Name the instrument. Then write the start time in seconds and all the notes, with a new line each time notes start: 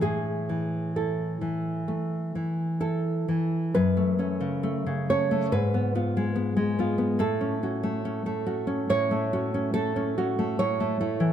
nylon-string guitar
0.01 A2 G#4
0.49 E3
0.96 E4 A4
1.41 E3
1.88 A3
2.35 E3
2.80 E4 A4
3.29 E3
3.75 F#2 B4
3.97 A3
4.19 A3 C#4
4.41 C#3
4.63 A3
4.87 C#3
5.10 A3 C#4 C#5
5.31 A3
5.52 G#2 B4
5.74 B3
5.95 B3 F4
6.17 G#3
6.36 B3
6.57 G#3
6.79 B3 F4
6.98 B3
7.19 A2 A4
7.41 C#4
7.63 C#4 F#4
7.83 A3
8.05 C#4
8.26 A3
8.47 C#4 F#4
8.67 C#4
8.90 A2 C#5
9.11 A3
9.33 C#4 F#4
9.54 C#4
9.74 A3 A4
9.96 C#4
10.18 C#4 F#4
10.39 A3
10.59 A2 C#5
10.80 A3
11.01 A3 E4
11.20 E3